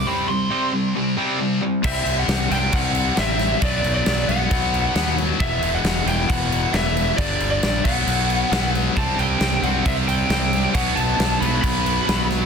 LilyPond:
<<
  \new Staff \with { instrumentName = "Lead electric guitar" } { \time 4/4 \key c \lydian \tempo 4 = 135 b''8 c'''4 r2 r8 | e''8. fis''8. g''8 fis''4 e''4 | d''8. d''8. fis''2 r8 | e''8. fis''8. g''8 fis''4 e''4 |
d''8. d''8. fis''2 r8 | a''8 g''4 fis''8 e''8 g''4. | fis''8 a''4 b''8 b''4. r8 | }
  \new Staff \with { instrumentName = "Distorted electric guitar" } { \clef bass \time 4/4 \key c \lydian <c g c'>8 <c g>8 <c g c'>8 <c g>8 <c g>8 <c g c'>8 <c g>8 <c g>8 | r1 | r1 | r1 |
r1 | <c g c'>1 | <b, fis b>1 | }
  \new Staff \with { instrumentName = "Distorted electric guitar" } { \clef bass \time 4/4 \key c \lydian <c g c'>8 <c g>8 <c g c'>8 <c g>8 <c g>8 <c g c'>8 <c g>8 <c g>8 | <c g c'>4. <c g c'>4. <c g c'>4 | <b, fis b>4. <b, fis b>4. <b, fis b>4 | <e, b, e>4. <e, b, e>4. <e, b, e>4 |
<g, d g>4. <b, fis b>4. <b, fis b>4 | <c g c'>4. <c g c'>4. <c g c'>4 | <b, fis b>4. <b, fis b>4. <b, fis b>4 | }
  \new Staff \with { instrumentName = "Distorted electric guitar" } { \clef bass \time 4/4 \key c \lydian <c g c'>2 <c g c'>8 <c g c'>4 r8 | <c g c'>4. <c g c'>4. <c g c'>4 | <b, fis b>4. <b, fis b>4. <b, fis b>4 | <e, b, e>4. <e, b, e>4. <e, b, e>4 |
<g, d g>4. <b, fis b>4. <b, fis b>4 | <c g c'>4. <c g c'>4. <c g c'>4 | <b, fis b>4. <b, fis b>4. <b, fis b>4 | }
  \new Staff \with { instrumentName = "Fingered electric bass" } { \clef bass \time 4/4 \key c \lydian r1 | c,8 c,8 c,8 c,8 c,4 a,,4 | b,,8 b,,8 b,,8 b,,8 b,,4 dis,4 | e,,8 e,,8 e,,8 e,,8 e,,4 e,,4 |
g,,8 g,,8 ais,,8 b,,8 b,,4 b,,4 | c,8 c,8 c,8 c,8 c,4 c,4 | b,,8 b,,8 b,,8 b,,8 b,,4 b,,4 | }
  \new DrumStaff \with { instrumentName = "Drums" } \drummode { \time 4/4 r4 r4 r4 r4 | <cymc bd>8 cymc8 <cymc sn>8 cymc8 <cymc bd>8 cymc8 <cymc sn>8 <cymc sn>8 | <cymc bd>8 cymc8 <cymc sn>8 cymc8 <cymc bd>8 cymc8 <cymc sn>8 cymc8 | <cymc bd>8 cymc8 <cymc sn>8 cymc8 <cymc bd>8 cymc8 <cymc sn>8 cymc8 |
<cymc bd>8 cymc8 <cymc sn>8 <cymc bd>8 cymc8 cymc8 <cymc sn>8 cymc8 | <cymc bd>8 cymc8 <cymc sn>8 cymc8 <cymc bd>8 cymc8 <cymc sn>8 cymc8 | <cymc bd>8 cymc8 <cymc sn>8 cymc8 <cymc bd>8 cymc8 <cymc sn>8 <cymc sn>8 | }
>>